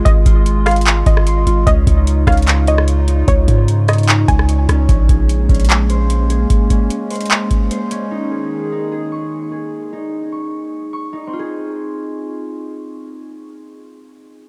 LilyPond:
<<
  \new Staff \with { instrumentName = "Synth pluck" } { \time 4/4 \key aes \major \tempo 4 = 149 ees''4. f''4 ees''4. | ees''4. f''4 ees''4. | des''4. ees''4 aes''4. | r1 |
r1 | r1 | r1 | r1 |
r1 | }
  \new Staff \with { instrumentName = "Harp" } { \time 4/4 \key aes \major <f' aes' c'''>8 f'4 c'''4. c'''8 f'8 | des'8 ees'4 des'8 ees'8 des''4 ees'8~ | ees'8 des'4 des''4. des''8 des'8 | des'8 aes'4 des'8 aes'8 c''4 aes'8~ |
aes'8 des'4 c''4. c''8 des'8 | ees'8 aes'4 ees'8 aes'8 des'''4 aes'8~ | aes'8 ees'4 des'''4. des'''8 ees'8 | <c' f' aes'>1~ |
<c' f' aes'>1 | }
  \new Staff \with { instrumentName = "Ambient pad" } { \time 4/4 \key aes \major << { <aes f'>1 | <des f'>1~ | <des f'>1 | <aes des'>1~ |
<aes des'>1 | <ees aes'>1 | r1 | r1 |
r1 | } \\ { r1 | ees'1~ | ees'1 | bes1~ |
bes1~ | bes1 | r1 | r1 |
r1 | } >> }
  \new Staff \with { instrumentName = "808-style bass" } { \clef bass \time 4/4 \key aes \major aes,,8 aes,,2 aes,,4 aes,,8 | des,8 des,4 des,2~ des,8 | des,8 aes,2 des,4 des,8 | bes,,8 bes,,4 bes,,2~ bes,,8 |
r1 | r1 | r1 | r1 |
r1 | }
  \new DrumStaff \with { instrumentName = "Drums" } \drummode { \time 4/4 <hh bd>8 <hh bd>8 hh8 <hh hho ss>32 hh32 hh32 hh32 <hc hh>8 <hh bd>16 ss16 hh8 hh8 | <hh bd>8 <hh bd>8 hh8 <hh bd ss>32 hh32 hh32 hh32 <hc hh>8 hh16 ss16 hh8 hh8 | <hh bd>8 <hh bd>8 hh8 <hh ss>32 hh32 hh32 hh32 <hc hh>8 <hh bd>16 ss16 hh8 <hh ss>8 | <hh bd>8 <hh bd>8 hh8 <hh bd>32 hh32 hh32 hh32 <hc hh>8 hh8 hh8 hh8 |
<hh bd>8 <hh bd>8 hh8 <hh hho>32 hh32 hh32 hh32 <hc hh>8 <hh bd>8 hh8 hh8 | r4 r4 r4 r4 | r4 r4 r4 r4 | r4 r4 r4 r4 |
r4 r4 r4 r4 | }
>>